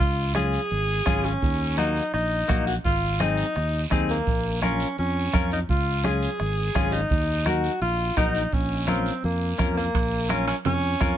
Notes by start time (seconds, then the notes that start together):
0.00 C#2 F4, bombo low, high conga
0.35 C#4 F4 G#4, bombo rim, high conga, short guiro
0.53 short guiro
0.71 G#1, high conga, long guiro
1.06 G#1 C#4 F4 G#4, bombo low, bombo rim, high conga, short guiro
1.24 C#4, short guiro
1.42 D#2, bombo low, high conga, long guiro
1.77 A#3 D#4 F#4, bombo rim, high conga, short guiro
1.96 short guiro
2.13 A#1 D#4, bombo rim, high conga, long guiro
2.48 A#1 A#3 D#4 F#4, bombo low, bombo rim, high conga, short guiro
2.67 F#4, short guiro
2.85 G#1 F4, bombo low, high conga, long guiro
3.20 C4 D#4 G#4, bombo rim, high conga, short guiro
3.38 short guiro
3.56 D#2, bombo rim, high conga, long guiro
3.91 D#2 C4 D#4 G#4, bombo low, bombo rim, high conga, short guiro
4.09 A#3, short guiro
4.27 A#1, bombo low, high conga, long guiro
4.62 C#4 F4 A#4, bombo rim, high conga, short guiro
4.80 short guiro
4.98 F2 C#4, high conga, long guiro
5.33 F2 C#4 F4 A#4, bombo low, bombo rim, high conga, short guiro
5.51 D#4, short guiro
5.69 C#2 F4, bombo low, high conga, long guiro
6.04 C#4 F4 G#4, bombo rim, high conga, short guiro
6.23 short guiro
6.39 G#1, bombo rim, high conga, long guiro
6.75 G#1 C#4 F4 G#4, bombo low, bombo rim, high conga, short guiro
6.92 D#4, short guiro
7.10 D#2, bombo low, high conga, long guiro
7.46 D#4 F#4 A#4, bombo rim, high conga, short guiro
7.64 short guiro
7.81 A#1 F4, high conga, long guiro
8.17 A#1 D#4 F#4 A#4, bombo low, bombo rim, high conga, short guiro
8.35 short guiro
8.52 A#1 C#4, bombo low, high conga, long guiro
8.87 C4 C#4 F4 A#4, bombo rim, high conga, short guiro
9.06 short guiro
9.24 F2 A#3, high conga, long guiro
9.58 F2 C#4 F4 A#4, bombo low, bombo rim, high conga, short guiro
9.77 A#3, short guiro
9.94 A#1, bombo low, high conga, high timbale, long guiro
10.29 C#4 F4 A#4, bombo rim, high conga, high timbale, short guiro
10.48 C#4, high timbale, short guiro
10.65 F2 C#4, high conga, low conga, high timbale, long guiro
11.00 F2 C#4 F4 A#4, bombo low, bombo rim, high conga, high timbale, short guiro